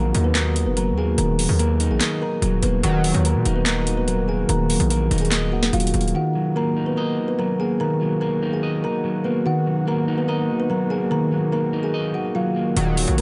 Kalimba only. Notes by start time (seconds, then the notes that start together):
Already playing: A#4 A#5
0.24 B3 B4
0.35 A#4 A#5
0.66 B3 B4
0.77 A#4 A#5
0.98 G#4 G#5
1.18 A#4 A#5
1.59 A#4 A#5
1.91 G#4 G#5
2.22 A#4 A#5
2.62 B3 B4
2.84 F#4 F#5
3.25 A#4 A#5
3.56 B3 B4
3.66 A#4 A#5
3.97 B3 B4
4.08 A#4 A#5
4.28 G#4 G#5
4.49 A#4 A#5
4.90 A#4 A#5
5.21 G#4 G#5
5.52 F#4 F#5
5.73 F4 F5
6.15 F#4 F#5
6.56 A#4 A#5
6.86 B3 B4
6.97 A#4 A#5
7.28 B3 B4
7.39 A#4 A#5
7.60 G#4 G#5
7.80 A#4 A#5
8.21 A#4 A#5
8.53 G#4 G#5
8.84 A#4 A#5
9.24 B3 B4
9.46 F#4 F#5
9.88 A#4 A#5
10.18 B3 B4
10.28 A#4 A#5
10.60 B3 B4
10.70 A#4 A#5
10.90 G#4 G#5
11.11 A#4 A#5
11.52 A#4 A#5
11.83 G#4 G#5
12.14 F#4 F#5
12.35 F4 F5
12.77 F#4 F#5
13.18 A#4